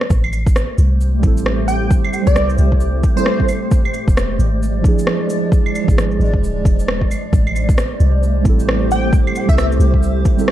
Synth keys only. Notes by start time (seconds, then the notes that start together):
1.19 G3 C4
1.24 E4 A4
2.22 G3 C4
2.27 E4 A4
3.15 G3 C4 E4
3.20 A4
3.38 G3 C4 E4 A4
4.80 F3 D4
4.85 E4 G#4
5.84 F3 D4
5.89 E4 G#4
8.41 G3 C4
8.46 E4 A4
9.45 G3 C4
9.50 E4 A4
10.37 G3 C4 E4
10.41 A4